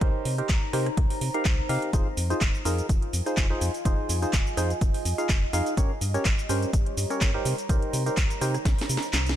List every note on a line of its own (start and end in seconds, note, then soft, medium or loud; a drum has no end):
0.00 0.10 C2 loud
0.00 2.94 D#4 medium
0.00 0.35 D#4 medium
0.00 0.65 G4 medium
0.00 0.35 G4 medium
0.00 0.35 A#4 medium
0.00 0.35 C5 loud
0.00 3.48 A#5 medium
0.00 kick loud
0.00 closed hi-hat medium
0.25 0.42 C3 medium
0.25 2.78 C5 medium
0.25 open hi-hat loud
0.38 0.51 D#4 medium
0.38 0.51 G4 medium
0.38 0.51 A#4 medium
0.38 0.51 C5 medium
0.38 closed hi-hat medium
0.49 0.58 C2 loud
0.49 kick loud
0.49 clap loud
0.49 closed hi-hat medium
0.73 0.90 C3 medium
0.73 0.88 D#4 loud
0.73 0.88 G4 medium
0.73 0.88 A#4 medium
0.73 0.88 C5 loud
0.73 cross-stick medium
0.73 open hi-hat loud
0.86 cross-stick medium
0.86 closed hi-hat soft
0.97 1.06 C2 loud
0.97 kick loud
0.97 closed hi-hat medium
1.10 open hi-hat medium
1.21 1.30 C3 medium
1.21 open hi-hat loud
1.34 1.47 D#4 medium
1.34 1.47 G4 medium
1.34 1.47 A#4 medium
1.34 1.47 F5 loud
1.34 closed hi-hat soft
1.45 1.62 C2 medium
1.45 kick loud
1.45 clap loud
1.45 closed hi-hat medium
1.69 1.78 C3 medium
1.69 1.91 D#4 loud
1.69 1.91 G4 loud
1.69 1.91 A#4 medium
1.69 1.91 F5 loud
1.69 open hi-hat loud
1.82 closed hi-hat soft
1.93 2.02 F1 loud
1.93 2.08 D#4 medium
1.93 2.08 F4 medium
1.93 6.45 F4 medium
1.93 2.08 G#4 medium
1.93 2.08 C5 medium
1.93 kick loud
1.93 closed hi-hat medium
1.93 cabasa soft
2.17 2.34 F2 medium
2.17 open hi-hat loud
2.17 cabasa medium
2.30 2.43 D#4 loud
2.30 2.43 F4 medium
2.30 2.43 G#4 medium
2.30 2.43 C5 loud
2.30 closed hi-hat medium
2.30 cabasa soft
2.38 2.50 F1 loud
2.38 6.45 D#5 medium
2.38 kick loud
2.38 clap loud
2.38 closed hi-hat medium
2.38 cabasa soft
2.42 5.77 G#5 medium
2.55 cabasa soft
2.65 2.82 F2 medium
2.65 2.87 D#4 loud
2.65 2.87 F4 medium
2.65 2.87 G#4 medium
2.65 2.87 A#4 loud
2.65 open hi-hat loud
2.65 cabasa medium
2.78 closed hi-hat medium
2.78 cabasa soft
2.89 2.98 F1 medium
2.89 kick loud
2.89 closed hi-hat medium
2.89 cabasa soft
3.02 closed hi-hat soft
3.13 3.22 F2 medium
3.13 open hi-hat loud
3.13 cabasa medium
3.26 3.46 D#4 medium
3.26 3.46 F4 medium
3.26 3.46 G#4 medium
3.26 3.46 C5 loud
3.26 closed hi-hat medium
3.26 cabasa soft
3.37 3.54 F1 loud
3.37 kick loud
3.37 clap loud
3.37 closed hi-hat medium
3.37 cabasa soft
3.50 3.71 D#4 medium
3.50 3.71 F4 medium
3.50 3.71 G#4 medium
3.50 3.71 C5 loud
3.61 3.70 F2 loud
3.61 open hi-hat loud
3.61 cabasa medium
3.74 closed hi-hat medium
3.74 cabasa soft
3.85 3.94 F1 loud
3.85 4.19 D#4 medium
3.85 4.19 F4 medium
3.85 4.19 G#4 medium
3.85 4.19 C5 loud
3.85 kick loud
3.85 closed hi-hat medium
3.85 cabasa soft
4.09 4.26 F2 medium
4.09 open hi-hat loud
4.09 cabasa medium
4.22 4.35 D#4 medium
4.22 4.35 F4 medium
4.22 4.35 G#4 medium
4.22 4.35 C5 loud
4.22 closed hi-hat medium
4.22 cabasa soft
4.33 4.42 F1 loud
4.33 kick loud
4.33 clap loud
4.33 closed hi-hat medium
4.33 cabasa soft
4.47 cabasa soft
4.57 4.74 F2 medium
4.57 4.72 D#4 medium
4.57 4.72 F4 medium
4.57 4.72 G#4 medium
4.57 4.72 C5 loud
4.57 cross-stick medium
4.57 open hi-hat loud
4.57 cabasa medium
4.70 closed hi-hat soft
4.70 cabasa soft
4.81 4.90 F1 loud
4.81 kick loud
4.81 closed hi-hat medium
4.81 cabasa soft
4.94 open hi-hat medium
5.05 5.14 F2 medium
5.05 open hi-hat loud
5.05 cabasa medium
5.18 5.31 D#4 medium
5.18 5.31 F4 medium
5.18 5.31 G#4 medium
5.18 5.31 F5 loud
5.18 closed hi-hat medium
5.18 cabasa soft
5.29 5.46 F1 loud
5.29 kick loud
5.29 clap loud
5.29 closed hi-hat medium
5.29 cabasa soft
5.53 5.62 F2 loud
5.53 5.75 D#4 loud
5.53 5.75 F4 loud
5.53 5.75 G#4 medium
5.53 5.75 F5 loud
5.53 open hi-hat loud
5.53 cabasa medium
5.66 closed hi-hat soft
5.66 cabasa soft
5.77 5.86 G1 loud
5.77 5.92 C#4 medium
5.77 5.92 G4 medium
5.77 8.33 G4 medium
5.77 5.92 A#4 medium
5.77 5.92 C#5 medium
5.77 kick loud
5.77 closed hi-hat medium
5.77 cabasa soft
6.00 6.18 G2 medium
6.00 7.45 C#5 medium
6.00 open hi-hat loud
6.00 cabasa medium
6.14 6.27 C#4 loud
6.14 6.27 G4 medium
6.14 6.27 A#4 medium
6.14 6.27 C#5 loud
6.14 closed hi-hat medium
6.14 cabasa soft
6.25 6.34 G1 loud
6.25 kick loud
6.25 clap loud
6.25 closed hi-hat medium
6.25 cabasa soft
6.39 9.36 A#5 medium
6.39 cabasa soft
6.49 6.66 G2 medium
6.49 6.71 C#4 medium
6.49 6.71 G4 medium
6.49 6.71 A#4 medium
6.49 6.71 C5 loud
6.49 open hi-hat loud
6.49 cabasa medium
6.62 closed hi-hat medium
6.62 cabasa soft
6.73 6.82 G1 medium
6.73 kick loud
6.73 closed hi-hat medium
6.73 cabasa soft
6.86 closed hi-hat soft
6.97 7.06 G2 medium
6.97 open hi-hat loud
6.97 cabasa medium
7.10 7.30 C#4 medium
7.10 7.30 G4 medium
7.10 7.31 A#4 medium
7.10 7.30 C#5 loud
7.10 closed hi-hat medium
7.10 cabasa soft
7.21 7.38 G1 loud
7.21 kick loud
7.21 clap loud
7.21 closed hi-hat medium
7.21 cabasa soft
7.34 7.55 D#4 medium
7.34 7.55 G4 medium
7.34 7.55 A#4 medium
7.34 7.55 C5 loud
7.45 7.54 C3 loud
7.45 9.36 D#4 loud
7.45 open hi-hat loud
7.45 cabasa medium
7.58 closed hi-hat medium
7.58 cabasa soft
7.69 7.78 C2 loud
7.69 8.03 D#4 medium
7.69 8.03 G4 medium
7.69 8.03 A#4 medium
7.69 8.03 C5 loud
7.69 kick loud
7.69 closed hi-hat medium
7.69 cabasa soft
7.82 closed hi-hat soft
7.93 8.10 C3 medium
7.93 open hi-hat loud
7.93 cabasa medium
8.06 8.19 D#4 medium
8.06 8.19 G4 medium
8.06 8.19 A#4 medium
8.06 8.19 C5 medium
8.06 closed hi-hat medium
8.06 cabasa soft
8.17 8.26 C2 loud
8.17 kick loud
8.17 clap loud
8.17 closed hi-hat medium
8.17 cabasa soft
8.25 9.36 C5 medium
8.30 closed hi-hat soft
8.30 cabasa soft
8.41 8.58 C3 medium
8.41 8.56 D#4 loud
8.41 8.56 G4 medium
8.41 8.56 A#4 medium
8.41 8.56 C5 loud
8.41 cross-stick medium
8.41 open hi-hat loud
8.41 cabasa medium
8.54 cross-stick medium
8.54 closed hi-hat medium
8.54 cabasa soft
8.65 8.74 C2 loud
8.65 kick loud
8.65 snare medium
8.65 closed hi-hat medium
8.65 cabasa soft
8.78 snare medium
8.78 open hi-hat medium
8.89 8.98 C3 medium
8.89 open hi-hat loud
8.89 cabasa medium
8.97 snare medium
9.02 closed hi-hat medium
9.02 cabasa soft
9.13 9.36 C2 loud
9.13 snare medium
9.13 clap loud
9.13 closed hi-hat medium
9.13 cabasa soft
9.26 snare medium
9.26 closed hi-hat soft
9.26 cabasa soft